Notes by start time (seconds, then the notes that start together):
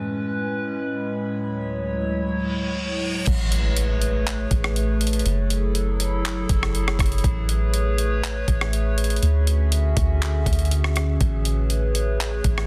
Already playing: A2 G#3 C#4 B4
1.29 D2 F#3 E4 C#5
2.28 reverse cymbal
3.27 A1 A3 G#4 B4 C#5, kick, closed hi-hat, crash, impact
3.52 closed hi-hat
3.77 closed hi-hat
4.02 closed hi-hat
4.27 clap, closed hi-hat
4.51 A1, kick, closed hi-hat
4.64 cross-stick
4.76 closed hi-hat
5.01 closed hi-hat
5.07 closed hi-hat
5.13 closed hi-hat
5.19 closed hi-hat
5.25 F#1 F#3 E4 G#4 A4, closed hi-hat
5.50 closed hi-hat
5.75 closed hi-hat
6.00 closed hi-hat
6.25 clap, closed hi-hat
6.49 F#1, kick, closed hi-hat
6.63 cross-stick
6.75 closed hi-hat
6.88 cross-stick
6.99 F#1, kick, cross-stick, closed hi-hat
7.06 closed hi-hat
7.12 closed hi-hat
7.18 closed hi-hat
7.24 A1 A3 B4 C#5, kick, closed hi-hat
7.49 closed hi-hat
7.74 closed hi-hat
7.98 closed hi-hat
8.24 clap, closed hi-hat
8.48 A1, kick, closed hi-hat
8.61 cross-stick
8.73 closed hi-hat
8.98 closed hi-hat
9.04 closed hi-hat
9.10 closed hi-hat
9.16 closed hi-hat
9.22 D2 D3 C#4 F#4 G#4 E5, closed hi-hat
9.47 closed hi-hat
9.72 closed hi-hat
9.97 D2, kick, closed hi-hat
10.22 clap, closed hi-hat
10.46 D2, kick, closed hi-hat
10.53 closed hi-hat
10.59 closed hi-hat
10.65 closed hi-hat
10.71 closed hi-hat
10.84 cross-stick
10.96 cross-stick, closed hi-hat
11.21 A1 A3 B4 C#5, kick, closed hi-hat
11.45 closed hi-hat
11.70 closed hi-hat
11.95 closed hi-hat
12.20 clap, closed hi-hat
12.44 A1, kick, closed hi-hat
12.58 cross-stick